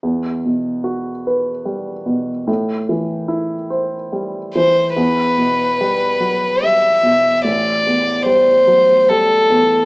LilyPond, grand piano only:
\new Staff \with { instrumentName = "Grand piano" } { \clef bass \time 3/4 \key e \minor \tempo 4 = 73 e,8 b,8 fis'8 b'8 g8 b,8 | a,8 e8 e'8 c''8 g8 e8 | e,8 b,8 g8 fis8 g8 b,8 | a,,8 e,8 g8 fis8 g8 e,8 | }